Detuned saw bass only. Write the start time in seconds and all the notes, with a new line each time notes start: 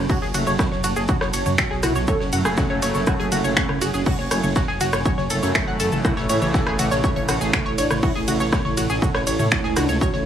0.22 F#1
0.34 F#1
0.47 F#1
0.72 F#1
0.84 F#1
0.96 F#1
1.21 F#1
1.34 F#1
1.46 F#2
1.71 B1
1.83 B1
1.96 B1
2.20 F#1
2.33 F#2
2.45 F#1
2.70 F#1
2.82 F#1
2.95 F#1
3.20 F#1
3.32 F#1
3.45 F#1
3.69 F#1
3.82 F#1
3.94 F#1
4.19 F#1
4.31 F#1
4.44 F#1
4.68 F#1
4.81 F#1
4.93 F#1
5.18 F#1
5.30 F#1
5.43 F#2
5.67 G#1
5.80 F#2
5.92 G#1
6.17 A1
6.29 A2
6.42 A1
6.67 A1
6.79 A1
6.91 A1
7.16 A1
7.29 A1
7.41 A1
7.66 A1
7.78 A1
7.91 A1
8.15 A1
8.28 A1
8.40 A1
8.65 A1
8.77 A1
8.90 A1
9.15 A1
9.27 A1
9.39 A2
9.64 C#2
9.76 C#2
9.89 C#2
10.14 A1